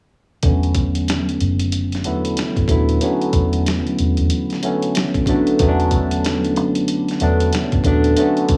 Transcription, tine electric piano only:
0.43 1.58 D3 medium
0.43 1.59 F#3 medium
0.43 1.59 A3 medium
0.43 1.60 B3 medium
0.43 1.60 C#4 medium
2.04 2.62 D3 medium
2.04 2.63 F#3 medium
2.04 2.63 A3 medium
2.04 2.63 B3 medium
2.04 2.64 E4 medium
2.69 2.98 D3 medium
2.69 2.98 F#3 medium
2.69 2.98 A3 medium
2.69 2.99 B3 medium
2.69 2.99 E4 medium
3.01 4.17 D3 medium
3.01 4.17 F#3 medium
3.01 4.17 A3 medium
3.01 4.18 B3 medium
3.01 4.18 C#4 medium
4.63 5.21 D3 medium
4.63 5.21 F#3 medium
4.63 5.21 A3 medium
4.63 5.22 B3 medium
4.63 5.22 C#4 medium
5.27 5.56 D3 medium
5.27 5.56 F#3 medium
5.27 5.57 A3 medium
5.27 5.57 B3 medium
5.27 5.57 D4 medium
5.60 6.75 D3 medium
5.60 6.75 F#3 medium
5.60 6.76 A3 medium
5.60 6.76 B3 medium
5.60 5.69 C#4 medium
5.69 6.79 D4 medium
7.21 7.79 D3 medium
7.21 7.79 F#3 medium
7.21 7.79 A3 medium
7.21 7.80 B3 medium
7.21 7.80 D4 medium
7.85 8.14 D3 medium
7.85 8.14 F#3 medium
7.85 8.15 A3 medium
7.85 8.15 B3 medium
7.85 8.15 D4 medium
8.17 8.57 D3 medium
8.17 8.57 F#3 medium
8.17 8.57 A3 medium
8.17 8.57 B3 medium
8.17 8.57 C#4 medium

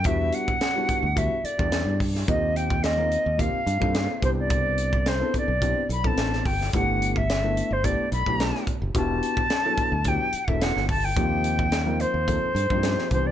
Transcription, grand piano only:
0.06 0.51 G3 medium
0.06 0.51 B3 medium
0.06 0.51 D4 medium
0.06 0.51 E4 medium
0.06 0.51 F#4 medium
0.75 1.02 G3 medium
0.75 1.02 B3 medium
0.75 1.02 D4 medium
0.75 1.02 E4 medium
0.75 1.02 F#4 medium
1.15 1.34 G3 medium
1.15 1.34 B3 medium
1.15 1.34 D4 medium
1.15 1.34 E4 medium
1.15 1.35 F#4 medium
1.44 1.51 E4 soft
1.44 1.52 A4 soft
1.58 1.94 G3 medium
1.58 1.94 B3 medium
1.58 1.94 D4 medium
1.58 1.94 E4 medium
1.58 1.94 G4 medium
2.14 2.21 E4 soft
2.14 2.21 G4 soft
2.27 2.73 A#3 medium
2.27 2.73 C4 medium
2.27 2.73 D#4 medium
2.27 2.73 F4 medium
2.27 2.73 G4 medium
2.97 3.24 A#3 medium
2.97 3.25 C4 medium
2.97 3.25 D#4 medium
2.97 3.25 F4 medium
2.97 3.25 A#4 medium
3.38 3.57 A#3 medium
3.38 3.57 C4 medium
3.38 3.57 D#4 medium
3.38 3.57 F4 medium
3.38 3.57 G4 medium
3.67 3.74 F4 soft
3.67 3.74 G4 soft
3.80 4.16 A#3 medium
3.80 4.16 C4 medium
3.80 4.16 D#4 medium
3.80 4.16 F4 medium
3.80 4.16 A4 medium
4.21 5.00 B3 medium
4.21 5.00 C4 medium
4.21 5.00 D4 medium
4.21 5.00 E4 medium
4.21 5.00 G4 medium
5.20 5.47 B3 medium
5.20 5.47 C4 medium
5.20 5.47 D4 medium
5.20 5.47 E4 medium
5.20 5.47 A4 medium
5.62 5.80 B3 medium
5.62 5.80 C4 medium
5.62 5.80 D4 medium
5.62 5.80 E4 medium
5.62 5.80 G4 medium
5.89 5.96 E4 soft
5.89 5.97 A4 soft
6.04 6.39 B3 medium
6.04 6.39 C4 medium
6.04 6.39 D4 medium
6.04 6.39 E4 medium
6.04 6.39 A4 medium
6.60 6.66 E4 soft
6.60 6.67 A4 soft
6.74 7.18 A3 medium
6.74 7.18 B3 medium
6.74 7.18 D4 medium
6.74 7.18 E4 medium
6.74 7.19 G4 medium
7.43 7.70 A3 medium
7.43 7.70 B3 medium
7.43 7.70 D4 medium
7.43 7.70 E4 medium
7.43 7.70 A4 medium
7.84 8.02 A3 medium
7.84 8.02 B3 medium
7.84 8.02 D4 medium
7.84 8.02 E4 medium
7.84 8.02 G4 medium
8.12 8.19 E4 soft
8.12 8.19 A4 soft
8.26 8.61 A3 medium
8.26 8.61 B3 medium
8.26 8.61 D4 medium
8.26 8.61 E4 medium
8.26 8.62 G4 medium
8.82 8.88 E4 soft
8.82 8.88 G4 soft
8.94 9.40 B3 medium
8.94 9.39 D4 medium
8.94 9.40 E4 medium
8.94 9.39 F#4 medium
8.94 9.40 G4 medium
9.65 9.91 F#3 medium
9.65 9.91 B3 medium
9.65 9.92 D4 medium
9.65 9.91 E4 medium
9.65 9.92 A4 medium
10.06 10.24 F#3 medium
10.06 10.24 B3 medium
10.06 10.24 D4 medium
10.06 10.25 E4 medium
10.06 10.25 G4 medium
10.34 10.41 E4 soft
10.34 10.41 G4 soft
10.48 10.83 F#3 medium
10.48 10.83 B3 medium
10.48 10.83 D4 medium
10.48 10.83 E4 medium
10.48 10.83 A4 medium
11.04 11.10 E4 soft
11.04 11.10 G4 soft
11.16 11.61 F3 medium
11.16 11.61 A#3 medium
11.16 11.61 C4 medium
11.16 11.62 D#4 medium
11.16 11.61 G4 medium
11.86 12.13 F3 medium
11.86 12.13 A#3 medium
11.86 12.13 C4 medium
11.86 12.13 D#4 medium
11.86 12.13 A#4 medium
12.28 12.46 F3 medium
12.28 12.46 A#3 medium
12.28 12.46 C4 medium
12.28 12.46 D#4 medium
12.28 12.46 A4 medium
12.56 12.63 D#4 soft
12.56 12.63 A4 soft
12.71 13.05 F3 medium
12.71 13.06 A#3 medium
12.71 13.05 C4 medium
12.71 13.06 D#4 medium
12.71 13.06 G4 medium
13.12 13.31 E3 medium
13.12 13.31 B3 medium
13.12 13.31 C4 medium
13.12 13.31 D4 medium
13.12 13.31 G4 medium

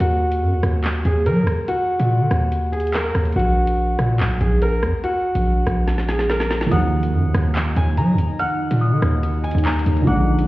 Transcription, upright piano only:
0.00 1.01 F#4 loud
1.06 1.21 G#4 medium
1.26 1.66 A#4 medium
1.68 2.69 F#4 loud
2.72 2.89 G#4 medium
2.95 3.34 A#4 medium
3.36 4.37 F#4 loud
4.41 4.57 G#4 medium
4.62 5.01 A#4 medium
5.04 6.05 F#4 loud
6.08 6.24 G#4 medium
6.30 6.69 A#4 medium
6.72 7.73 F#5 loud
7.77 7.93 G#5 medium
7.98 8.37 A#5 medium
8.40 9.40 F#5 loud
9.44 9.60 G#5 medium
9.66 10.05 A#5 medium
10.07 10.47 F#5 loud

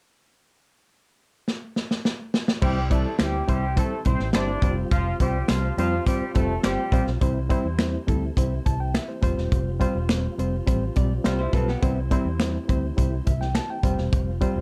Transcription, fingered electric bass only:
2.62 3.04 C2 loud
3.20 3.40 D2 medium
3.49 3.80 C2 medium
4.06 4.16 B1 loud
4.20 4.30 A1 medium
4.62 4.83 F1 medium
4.91 5.12 F1 medium
5.20 5.41 C2 loud
5.49 5.70 C2 medium
5.77 5.98 F2 medium
6.21 muted fingered electric bass stroke soft
6.36 6.56 F1 medium
6.65 6.75 G1 medium
6.92 7.03 A#1 loud
7.07 7.18 B1 medium
7.21 7.53 C2 medium
7.65 7.96 E2 medium
8.08 8.29 D2 medium
8.37 8.58 C2 medium
8.66 8.97 C2 medium
9.23 9.33 F1 loud
9.37 9.48 E1 medium
9.52 9.83 F1 medium
9.95 10.26 E1 medium
10.38 10.59 F1 medium
10.67 10.88 A1 medium
10.97 11.17 B1 medium
11.25 11.46 C2 medium
11.53 11.74 B1 loud
11.82 12.14 C2 loud
12.25 12.57 E2 medium
12.69 12.90 D2 medium
12.98 13.19 C2 medium
13.27 13.58 C2 medium
13.83 13.94 F1 medium
13.99 14.09 E1 medium
14.13 14.44 F1 medium
14.55 14.61 E1 medium

